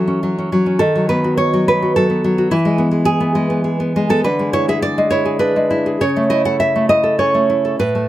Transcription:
nylon-string guitar
Already playing: E3 F#3 A4
0.08 C#4
0.23 F#3
0.38 C#4
0.52 F#3
0.66 C#4
0.79 D#3 A4
0.96 F#3
1.09 B3 B4
1.24 F#4
1.37 C#5
1.53 F#3
1.68 B3 B4
1.82 F#4
1.96 F#3 A4
2.10 B3
2.24 F#3
2.38 F#4
2.51 E3 E4
2.65 G#3
2.78 B3
2.91 G#3
3.05 G#4
3.20 B3
3.35 G#3
3.50 B3
3.64 G#3
3.80 B3
3.96 G#3
4.09 B3 A4
4.24 D3 B4
4.39 G#3
4.53 E4 C#5
4.68 G#4 E5
4.82 D5
4.98 G#3
5.11 E4 C#5
5.25 G#4
5.39 D4 B4
5.56 G#3
5.71 E4
5.86 G#4
6.01 C#3 C#5
6.16 A3
6.30 E4 D#5
6.45 A4 F#5
6.60 E5
6.76 A3
6.89 E4 D#5
7.04 A4
7.19 C#4 C#5
7.35 A3
7.50 E4
7.65 A4
7.79 A2 B4
7.95 A3

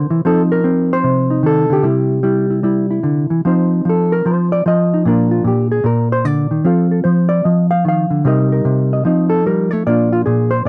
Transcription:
hollow-body jazz guitar
Already playing: C3 D3 E4 A#4 C5
0.10 E3
0.25 F3 C4 D#4 A4
0.52 A#4
0.64 C4
0.93 C5
1.04 C3
1.30 D#4
1.43 D#3 A4
1.70 D3 G4
1.83 C3 G3 E4
2.23 G3 E4
2.50 E4
2.63 G3 E4
2.91 E4
3.03 D3
3.30 E3
3.45 F3 C4 D#4 C5
3.85 F3
3.90 A4
4.12 A#4
4.25 F3 C5
4.52 D5
4.66 F3 D#5
4.94 D#4
5.05 A#2 A#3 D4 F4 A#4
5.31 F4
5.44 A#2 G4
5.72 G#4
5.84 A#2 A#4
6.12 C5
6.25 D3 D5
6.51 D#3
6.64 F3 C4 F4 A4 F5
6.91 A4
7.04 F3 C5
7.29 D5
7.45 F3 D#5
7.71 F5
7.85 D#3 F5
8.10 D3
8.25 C3 G3 D#4 A#4 D#5
8.52 A#4
8.65 C3
8.93 D#5
9.05 F3 C4 D#4 D#5
9.30 A4
9.46 G3 A#4
9.71 A3 C#5
9.86 A#2 A#3 D4 F4 D5
10.13 F4
10.26 A#2 G#4
10.51 C5
10.65 A#2

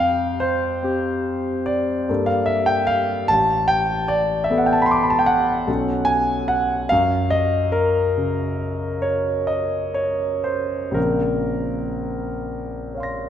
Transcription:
grand piano
Already playing: F2 G5
0.00 F5
0.40 C5
0.83 C4 G4
1.66 D5
2.09 G2 A#3 A4
2.26 F5
2.46 E5
2.66 G5
2.87 F5
3.28 A1 A5
3.68 G5
4.08 D5
4.44 E5
4.50 B3 A4
4.58 F#5
4.66 G5
4.73 A5
4.82 B5
4.86 C6
4.91 D6
4.97 C6
5.03 B5
5.10 A5
5.19 G5
5.26 F#5
5.67 B1 C#4 A4
6.05 G#5
6.48 F#5
6.89 F#2 F5
7.30 D#5
7.72 A#4
8.18 C#3
9.02 C#5
9.47 D#5
9.94 C#5
10.44 C5
10.91 A#1 C#3 F3 C4 A#4
12.94 C#5 F5
13.00 C6 A#6

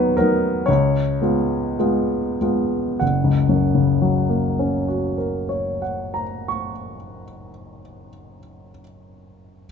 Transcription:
grand piano
Already playing: D#2 F#3 B3 D#4 B4 C#5
0.17 F#3 B3 D#4 A#4
0.66 C#2 C#5
1.22 G#3 B3 F4
1.79 G#3 B3 F4
2.41 G#3 B3 F4
3.00 F#1 F#5
3.24 C#2
3.49 F#2
3.75 C#3
4.02 F#3
4.29 A#3
4.59 C#4
4.88 F#4
5.18 A#4
5.49 C#5
5.82 F#5
6.14 A#5
6.48 C#6

